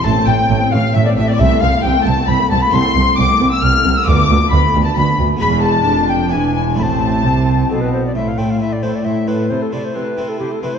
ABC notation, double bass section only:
X:1
M:3/4
L:1/8
Q:1/4=133
K:Am
V:1 name="Double bass section" clef=bass
A,,, A,,, A,,, A,,, A,,, A,,, | C,, C,, C,, C,, C,, C,, | C,, C,, C,, C,, C,, C,, | D,, D,, D,, D,, D,, D,, |
E,,,2 F,,,2 E,,,2 | A,,,2 C,,2 B,,,2 | z6 | z6 |]